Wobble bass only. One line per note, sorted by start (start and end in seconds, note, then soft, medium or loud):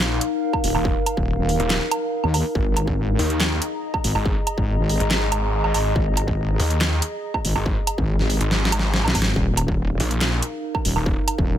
0.64 0.73 D#1 loud
1.17 1.37 D#1 medium
1.38 1.58 D#1 loud
2.24 2.43 D#2 loud
2.55 3.17 G#1 medium
4.04 4.13 G#1 medium
4.58 4.77 G#1 loud
4.79 4.98 G#1 loud
5.96 6.58 G#1 medium
7.45 7.54 G#1 medium
7.98 8.18 G#1 medium
8.19 8.39 G#1 loud
9.15 9.34 G#1 loud
9.36 9.98 D#1 loud
10.85 10.94 D#1 loud
11.38 11.58 D#1 medium